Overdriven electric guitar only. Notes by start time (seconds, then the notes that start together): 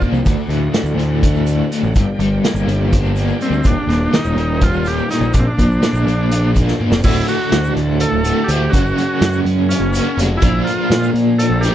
Already playing: D4 F4
0.02 A#3
0.27 D2
0.49 A2
0.74 D3
0.98 A2
1.23 A3
1.47 D3
1.72 A2
1.96 G2
2.20 G3
2.45 A#3
2.68 G3
2.93 D4
3.16 A#3
3.41 G3
3.65 D#2
3.88 A#2
4.13 D#3
4.38 A#2
4.62 G3
4.86 D#3
5.10 A#2
5.33 A#2
5.58 A#3
5.82 D4
6.07 A#3
6.31 F4
6.55 D4
6.81 A#3
7.04 D2 A2 D3 A3 F#4
8.24 D2 A2 D3 A3 F#4
8.48 D2 A2 D3 A3 F#4
8.72 F#2 C#3 F#3 A#3 C#4 F#4
9.93 F#2 C#3 F#3 A#3 C#4 F#4
10.17 F#2 C#3 F#3 A#3 C#4 F#4
10.41 A#2 F3 A#3 D4 F4 A#4
11.63 A#2 F3 A#3 D4 F4 A#4